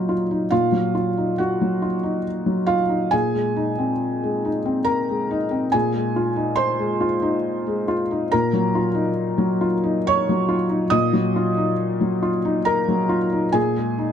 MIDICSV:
0, 0, Header, 1, 2, 480
1, 0, Start_track
1, 0, Tempo, 873362
1, 283, Time_signature, 3, 2, 24, 8
1, 2680, Tempo, 855920
1, 4120, Tempo, 874636
1, 7784, End_track
2, 0, Start_track
2, 0, Title_t, "Felt piano"
2, 0, Program_c, 0, 0
2, 0, Control_c, 0, 64, 127
2, 0, Note_on_c, 0, 46, 55
2, 0, Note_on_c, 0, 54, 36
2, 0, Note_on_c, 0, 63, 47
2, 0, Note_on_c, 0, 65, 45
2, 0, Note_on_c, 0, 70, 68
2, 0, Note_on_c, 0, 82, 74
2, 48, Note_off_c, 0, 65, 0
2, 48, Note_on_c, 0, 65, 44
2, 65, Note_off_c, 0, 63, 0
2, 116, Note_off_c, 0, 54, 0
2, 169, Note_on_c, 0, 63, 40
2, 238, Note_off_c, 0, 65, 0
2, 254, Note_off_c, 0, 46, 0
2, 254, Note_off_c, 0, 70, 0
2, 270, Note_off_c, 0, 82, 0
2, 278, Note_on_c, 0, 77, 84
2, 283, Note_on_c, 0, 46, 48
2, 285, Note_on_c, 0, 65, 57
2, 291, Control_c, 0, 64, 0
2, 360, Note_off_c, 0, 63, 0
2, 391, Control_c, 0, 64, 127
2, 397, Note_on_c, 0, 54, 38
2, 513, Note_off_c, 0, 65, 0
2, 521, Note_on_c, 0, 65, 46
2, 595, Note_off_c, 0, 54, 0
2, 645, Note_on_c, 0, 63, 35
2, 716, Note_off_c, 0, 65, 0
2, 760, Note_on_c, 0, 78, 65
2, 764, Note_off_c, 0, 77, 0
2, 769, Note_on_c, 0, 66, 52
2, 887, Note_on_c, 0, 54, 36
2, 1001, Note_on_c, 0, 65, 42
2, 1025, Note_off_c, 0, 63, 0
2, 1075, Note_off_c, 0, 54, 0
2, 1117, Note_on_c, 0, 63, 46
2, 1191, Note_off_c, 0, 65, 0
2, 1219, Note_off_c, 0, 66, 0
2, 1237, Note_off_c, 0, 78, 0
2, 1353, Note_on_c, 0, 54, 40
2, 1465, Note_on_c, 0, 77, 82
2, 1469, Note_on_c, 0, 65, 65
2, 1500, Note_off_c, 0, 63, 0
2, 1547, Note_off_c, 0, 54, 0
2, 1588, Note_on_c, 0, 63, 41
2, 1695, Note_off_c, 0, 46, 0
2, 1696, Note_off_c, 0, 65, 0
2, 1709, Note_on_c, 0, 80, 93
2, 1711, Note_off_c, 0, 77, 0
2, 1713, Note_off_c, 0, 63, 0
2, 1719, Note_on_c, 0, 46, 49
2, 1720, Note_on_c, 0, 68, 64
2, 1727, Control_c, 0, 64, 0
2, 1831, Control_c, 0, 64, 127
2, 1835, Note_on_c, 0, 56, 44
2, 1958, Note_on_c, 0, 63, 50
2, 2029, Note_off_c, 0, 56, 0
2, 2081, Note_on_c, 0, 60, 41
2, 2150, Note_off_c, 0, 63, 0
2, 2327, Note_on_c, 0, 56, 42
2, 2444, Note_on_c, 0, 63, 49
2, 2463, Note_off_c, 0, 60, 0
2, 2515, Note_off_c, 0, 56, 0
2, 2558, Note_on_c, 0, 60, 53
2, 2633, Note_off_c, 0, 63, 0
2, 2658, Note_off_c, 0, 68, 0
2, 2663, Note_on_c, 0, 70, 58
2, 2663, Note_on_c, 0, 82, 77
2, 2674, Note_off_c, 0, 80, 0
2, 2800, Note_on_c, 0, 56, 42
2, 2921, Note_on_c, 0, 63, 54
2, 2947, Note_off_c, 0, 60, 0
2, 2995, Note_off_c, 0, 56, 0
2, 3034, Note_on_c, 0, 60, 45
2, 3115, Note_off_c, 0, 63, 0
2, 3134, Note_off_c, 0, 70, 0
2, 3142, Note_off_c, 0, 46, 0
2, 3152, Note_on_c, 0, 80, 98
2, 3156, Note_off_c, 0, 82, 0
2, 3159, Note_off_c, 0, 60, 0
2, 3162, Note_on_c, 0, 46, 62
2, 3166, Note_on_c, 0, 68, 65
2, 3173, Control_c, 0, 64, 0
2, 3252, Control_c, 0, 64, 127
2, 3277, Note_on_c, 0, 56, 51
2, 3401, Note_on_c, 0, 65, 44
2, 3470, Note_off_c, 0, 56, 0
2, 3513, Note_on_c, 0, 63, 46
2, 3591, Note_off_c, 0, 65, 0
2, 3617, Note_off_c, 0, 68, 0
2, 3622, Note_on_c, 0, 84, 90
2, 3630, Note_on_c, 0, 72, 72
2, 3633, Note_off_c, 0, 80, 0
2, 3755, Note_on_c, 0, 56, 49
2, 3874, Note_on_c, 0, 65, 55
2, 3896, Note_off_c, 0, 63, 0
2, 3947, Note_off_c, 0, 56, 0
2, 3995, Note_on_c, 0, 63, 53
2, 4068, Note_off_c, 0, 65, 0
2, 4242, Note_on_c, 0, 56, 48
2, 4335, Note_off_c, 0, 72, 0
2, 4353, Note_off_c, 0, 84, 0
2, 4359, Note_on_c, 0, 65, 59
2, 4385, Note_off_c, 0, 63, 0
2, 4435, Note_off_c, 0, 56, 0
2, 4484, Note_on_c, 0, 63, 54
2, 4554, Note_off_c, 0, 65, 0
2, 4580, Note_off_c, 0, 46, 0
2, 4598, Note_on_c, 0, 82, 90
2, 4602, Note_on_c, 0, 70, 71
2, 4604, Note_off_c, 0, 63, 0
2, 4607, Note_on_c, 0, 46, 61
2, 4614, Control_c, 0, 64, 0
2, 4695, Control_c, 0, 64, 127
2, 4717, Note_on_c, 0, 54, 50
2, 4837, Note_on_c, 0, 65, 52
2, 4909, Note_off_c, 0, 54, 0
2, 4943, Note_on_c, 0, 63, 51
2, 5028, Note_off_c, 0, 65, 0
2, 5183, Note_on_c, 0, 54, 54
2, 5309, Note_on_c, 0, 65, 50
2, 5331, Note_off_c, 0, 63, 0
2, 5381, Note_off_c, 0, 54, 0
2, 5432, Note_on_c, 0, 63, 57
2, 5505, Note_off_c, 0, 65, 0
2, 5534, Note_off_c, 0, 70, 0
2, 5554, Note_off_c, 0, 82, 0
2, 5562, Note_on_c, 0, 85, 105
2, 5564, Note_on_c, 0, 73, 78
2, 5682, Note_on_c, 0, 54, 52
2, 5790, Note_on_c, 0, 65, 58
2, 5819, Note_off_c, 0, 63, 0
2, 5871, Note_off_c, 0, 54, 0
2, 5902, Note_on_c, 0, 63, 53
2, 5983, Note_off_c, 0, 65, 0
2, 6014, Note_off_c, 0, 46, 0
2, 6016, Note_off_c, 0, 73, 0
2, 6018, Note_on_c, 0, 87, 103
2, 6024, Note_on_c, 0, 46, 71
2, 6024, Note_on_c, 0, 75, 80
2, 6037, Note_off_c, 0, 85, 0
2, 6043, Control_c, 0, 64, 0
2, 6098, Note_off_c, 0, 63, 0
2, 6133, Control_c, 0, 64, 127
2, 6144, Note_on_c, 0, 54, 55
2, 6269, Note_on_c, 0, 65, 54
2, 6338, Note_off_c, 0, 54, 0
2, 6385, Note_on_c, 0, 63, 45
2, 6460, Note_off_c, 0, 65, 0
2, 6625, Note_on_c, 0, 54, 45
2, 6744, Note_on_c, 0, 65, 59
2, 6770, Note_off_c, 0, 63, 0
2, 6818, Note_off_c, 0, 54, 0
2, 6867, Note_on_c, 0, 63, 58
2, 6938, Note_off_c, 0, 65, 0
2, 6962, Note_off_c, 0, 75, 0
2, 6978, Note_on_c, 0, 82, 90
2, 6980, Note_off_c, 0, 87, 0
2, 6984, Note_on_c, 0, 70, 77
2, 7105, Note_on_c, 0, 54, 47
2, 7220, Note_on_c, 0, 65, 57
2, 7254, Note_off_c, 0, 63, 0
2, 7302, Note_off_c, 0, 54, 0
2, 7345, Note_on_c, 0, 63, 48
2, 7420, Note_off_c, 0, 65, 0
2, 7447, Note_off_c, 0, 46, 0
2, 7450, Note_off_c, 0, 70, 0
2, 7457, Note_on_c, 0, 80, 91
2, 7462, Note_on_c, 0, 46, 60
2, 7467, Note_on_c, 0, 68, 84
2, 7469, Note_off_c, 0, 82, 0
2, 7471, Note_off_c, 0, 63, 0
2, 7485, Control_c, 0, 64, 0
2, 7575, Control_c, 0, 64, 127
2, 7588, Note_on_c, 0, 56, 48
2, 7708, Note_on_c, 0, 63, 49
2, 7784, Note_off_c, 0, 46, 0
2, 7784, Note_off_c, 0, 56, 0
2, 7784, Note_off_c, 0, 63, 0
2, 7784, Note_off_c, 0, 68, 0
2, 7784, Note_off_c, 0, 80, 0
2, 7784, End_track
0, 0, End_of_file